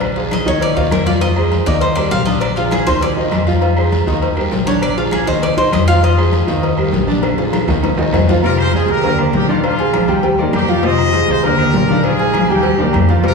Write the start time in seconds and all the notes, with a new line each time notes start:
Already playing: A#1 D3 D4 D5
0.01 cowbell, high conga, low agogo, long guiro, claves
0.16 F3 F4 G#4, cowbell, high conga
0.31 D#5, cowbell, high conga, low timbale, low agogo, short guiro, claves
0.46 D#2 D#3 D#4 C#5 D#5, high conga, low agogo, short guiro
0.61 D5, cowbell, high conga, low agogo, long guiro
0.76 D#2 D#3 D#4 F4 D#5, high conga
0.91 F2 A#4, cowbell, high conga, low timbale, low agogo, short guiro, claves
1.06 F3 F4 D5 F5, cowbell, high conga, short guiro
1.21 F3 F4 D#5 F5, cowbell, high conga, low agogo, long guiro
1.36 G#3 G#4 C5, high conga, low agogo, claves
1.51 cowbell, high conga, low timbale, low agogo, short guiro
1.66 D#2 D#3 D#4 D5 D#5, cowbell, high conga, short guiro
1.81 C5, cowbell, high conga, low agogo, long guiro
1.95 G3 G4 A#4 D5, high conga, low agogo, claves
2.11 A#1 F5, cowbell, high conga, low timbale, short guiro
2.25 D3 D4 D5 D#5, high conga, low agogo, short guiro
2.40 D5, cowbell, high conga, low agogo, long guiro, claves
2.56 F3 F4 G#4, cowbell, high conga
2.71 G#4, cowbell, high conga, low timbale, low agogo, short guiro, claves
2.87 D#2 D#3 D#4 C5 D#5, high conga, low agogo, short guiro
3.01 D5, cowbell, high conga, low agogo, long guiro
3.16 D#3 D#4 D#5, high conga
3.31 F2, cowbell, high conga, low timbale, low agogo, short guiro, claves
3.47 F3 F4 F5, cowbell, high conga, short guiro
3.61 F3 F4 F5, cowbell, high conga, low agogo, long guiro
3.77 G#3 G#4 C5, high conga, low agogo, claves
3.92 cowbell, high conga, low timbale, low agogo, short guiro
4.06 D#2 D#3 D#4 D#5, cowbell, high conga, short guiro
4.21 cowbell, high conga, low agogo, long guiro
4.37 G3 G4 A#4, high conga, low agogo, claves
4.52 A#1, cowbell, high conga, low timbale, short guiro
4.66 D3 D4 C#5 D5, high conga, low agogo, short guiro
4.82 D5, cowbell, high conga, low agogo, claves
4.96 F3 F4 G#4, cowbell, high conga
5.11 G#4, cowbell, high conga, low timbale, low agogo, short guiro, claves
5.26 D#2 D#3 D#4 C5 D#5, high conga, low agogo, short guiro
5.42 D5, cowbell, high conga, low agogo, long guiro
5.57 D#2 D#3 D#4 C5 D#5, high conga
5.72 F2 D#5, cowbell, high conga, low timbale, low agogo, short guiro, claves
5.88 F3 F4 F5, cowbell, short guiro
6.03 F3 F4 D#5 F5, cowbell, high conga, low agogo, long guiro
6.18 G#3 G#4 C5, high conga, low agogo, claves
6.32 cowbell, high conga, low timbale, low agogo, short guiro
6.47 D#2 D#3 D#4 D#5, cowbell, high conga, short guiro
6.62 cowbell, high conga, low agogo, long guiro
6.77 G3 G4 A#4, high conga, low agogo, claves
6.92 A#1, cowbell, high conga, low timbale, short guiro
7.07 D3 D4 D5, high conga, low agogo, short guiro
7.23 cowbell, high bongo, high conga, low agogo, long guiro, claves
7.38 F3 F4 G#4, cowbell, high bongo, high conga
7.53 cowbell, high bongo, high conga, high timbale, low agogo, short guiro, claves
7.68 D#2 D#3 D#4 D#5, low bongo, high conga, high timbale, low agogo, short guiro
7.83 cowbell, low bongo, high conga, high timbale, low agogo, long guiro
7.98 D#2 D#3 D#4 D#5, low bongo, high conga, low timbale
8.12 F2, cowbell, low bongo, high conga, low timbale, low agogo, short guiro, claves
8.27 F3 F4 F5, cowbell, low bongo, high conga, low timbale, short guiro
8.42 C3 F3 F4 A#4 F5, cowbell, high conga, low agogo
8.57 G#4 C5, high conga, low agogo, claves
8.73 G#3 F4 G#4 C5, cowbell, high conga, low timbale, low agogo
8.87 D#2 G4 A#4, cowbell, high conga
9.03 D3 A#3 A#4 D5, cowbell, high conga, low agogo
9.19 A#3 A#4 D5, high conga, low agogo, claves
9.33 A#1 D#4 G4, cowbell, high conga, low timbale
9.48 D#3 D4 F4 D5 F5, high conga, low agogo
9.64 D4 F4, cowbell, high conga, low agogo, claves
9.79 G#3 G#4 G#5, cowbell, high conga
9.93 F3, cowbell, high conga, low timbale, low agogo, claves
10.08 D#2 G3 G4 G5, high conga, low agogo
10.23 G3 G4 G5, cowbell, high conga, low agogo
10.38 D#3 A#3 A#4 D5, high conga
10.53 F2 D#4 G4, cowbell, high conga, low timbale, low agogo, claves
10.68 F3 F4 F5, cowbell, high conga
10.83 C3 F3 F4 C5 D#5 F5, cowbell, high conga, low agogo
10.98 high conga, low agogo, claves
11.13 G#3 G#4 C5, cowbell, high conga, low timbale, low agogo
11.28 D#2 G#4 C5, cowbell, high conga
11.43 D3 A#3 G4 A#4 D5, cowbell, high conga, low agogo
11.58 A#3 A#4 D5, high conga, low agogo, claves
11.74 A#1, cowbell, high conga, low timbale
11.89 D#3 D4 D5 F5, high conga, low agogo
12.03 F4 G#4, cowbell, high conga, low agogo, claves
12.19 G#3 G#4 G#5, cowbell, high conga
12.34 F3, cowbell, high conga, low timbale, low agogo, claves
12.48 D#2 G3 D#4 G4 G5, high conga, low agogo
12.63 G3 G4 G5, cowbell, high conga, low agogo
12.78 D#2 D#3 A#3 A#4 D5, high conga
12.93 F2, cowbell, high conga, low timbale, low agogo, claves
13.09 F3 F4 F5, cowbell
13.24 C3 F3 F4 A#4 F5, cowbell, high conga, low agogo, long guiro